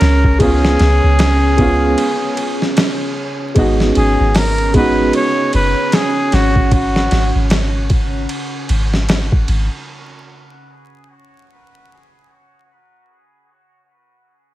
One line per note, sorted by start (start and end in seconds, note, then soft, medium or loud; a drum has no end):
0.00 0.77 C#2 loud
0.00 0.35 G#3 medium
0.00 0.36 B3 medium
0.00 0.37 C#4 medium
0.00 3.55 C#4 medium
0.00 0.38 F4 medium
0.00 0.40 A#4 loud
0.00 3.55 C#5 medium
0.00 snare soft
0.00 ride medium
0.24 kick medium
0.39 1.54 G#3 medium
0.39 1.55 B3 medium
0.39 1.55 C#4 medium
0.39 2.73 G#4 loud
0.39 kick loud
0.39 ride medium
0.43 1.56 F4 medium
0.65 snare medium
0.79 1.00 C#2 medium
0.79 snare soft
0.79 ride medium
1.04 1.95 C#2 medium
1.19 snare loud
1.19 ride medium
1.57 3.51 G#3 medium
1.57 3.52 B3 medium
1.57 3.53 C#4 medium
1.57 kick medium
1.57 ride medium
1.61 3.53 F4 medium
1.98 ride medium
2.37 ride medium
2.62 snare soft
2.77 snare loud
2.77 ride medium
3.55 3.92 G#1 medium
3.55 4.70 G#3 medium
3.55 4.70 B3 medium
3.55 13.05 C#4 medium
3.55 4.71 D#4 medium
3.55 13.05 C#5 medium
3.55 kick loud
3.55 ride medium
3.59 4.72 F#4 medium
3.80 snare soft
3.95 4.17 G#1 medium
3.95 4.38 G#4 medium
3.95 ride medium
4.20 5.11 G#1 medium
4.35 4.75 A#4 medium
4.35 snare loud
4.35 open hi-hat medium
4.58 ride soft
4.74 6.67 G#3 medium
4.74 6.68 B3 medium
4.74 6.69 D#4 medium
4.74 5.12 B4 medium
4.74 kick medium
4.74 ride medium
4.78 6.69 F#4 medium
5.13 5.51 C#5 loud
5.13 ride medium
5.53 5.74 F#1 loud
5.53 5.96 B4 loud
5.53 ride medium
5.92 6.36 G#4 medium
5.92 snare loud
5.92 ride medium
6.32 7.08 G#1 loud
6.32 6.73 F#4 loud
6.32 snare soft
6.32 ride medium
6.56 kick medium
6.71 7.47 F#4 medium
6.71 kick loud
6.71 ride medium
6.96 snare soft
7.11 7.32 G#1 medium
7.11 snare soft
7.11 ride medium
7.35 8.27 G#1 medium
7.50 snare loud
7.50 ride medium
7.90 kick medium
7.90 ride medium
8.29 ride medium
8.69 9.45 G#1 medium
8.69 ride medium
8.94 snare soft
9.09 snare loud
9.09 ride medium
9.32 kick medium
9.48 9.69 G#1 medium
9.48 ride medium